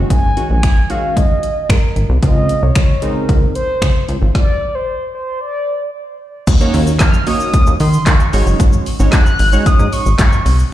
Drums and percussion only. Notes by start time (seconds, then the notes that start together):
0.10 kick, closed hi-hat
0.37 closed hi-hat
0.63 finger snap, kick, closed hi-hat
0.90 closed hi-hat
1.17 kick, closed hi-hat
1.43 closed hi-hat
1.70 finger snap, kick, closed hi-hat
1.96 closed hi-hat
2.23 kick, closed hi-hat
2.49 closed hi-hat
2.75 finger snap, kick, closed hi-hat
3.02 closed hi-hat
3.29 kick, closed hi-hat
3.55 closed hi-hat
3.82 finger snap, kick, closed hi-hat
4.09 closed hi-hat
4.35 kick, snare
6.47 kick, closed hi-hat, crash, shaker
6.60 shaker
6.74 open hi-hat, shaker
6.87 shaker
6.99 kick, snare, clap, closed hi-hat, shaker
7.14 shaker
7.27 open hi-hat, shaker
7.40 shaker
7.54 kick, closed hi-hat, shaker
7.67 shaker
7.80 open hi-hat, shaker
7.93 shaker
8.06 kick, snare, clap, closed hi-hat, shaker
8.20 shaker
8.33 open hi-hat, shaker
8.47 shaker
8.60 kick, closed hi-hat, shaker
8.73 shaker
8.86 open hi-hat, shaker
9.00 shaker
9.12 kick, snare, clap, closed hi-hat, shaker
9.26 shaker
9.39 open hi-hat, shaker
9.53 shaker
9.66 kick, closed hi-hat, shaker
9.79 shaker
9.93 open hi-hat, shaker
10.06 shaker
10.18 kick, snare, clap, closed hi-hat, shaker
10.32 shaker
10.46 open hi-hat, shaker
10.59 shaker